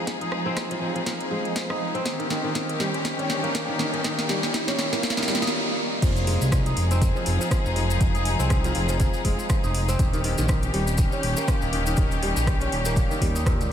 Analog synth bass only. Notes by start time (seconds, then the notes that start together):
0.07 F1
0.46 C2
0.82 F1
1.31 F1
1.70 F1
2.05 D#1
2.44 A#1
2.80 D#1
3.29 D#1
3.68 D#1
4.04 D#1
4.43 A#1
4.79 D#1
5.28 D#2
6.02 F1
6.41 C2
6.77 F1
7.27 F1
7.66 F1
8.01 F1
8.40 C2
8.75 F1
9.25 F1
9.64 F1
9.99 D#1
10.38 A#1
10.73 D#1
11.23 D#1
11.62 D#1
11.97 D#1
12.36 A#1
12.72 D#1
13.21 D#2
13.60 C#2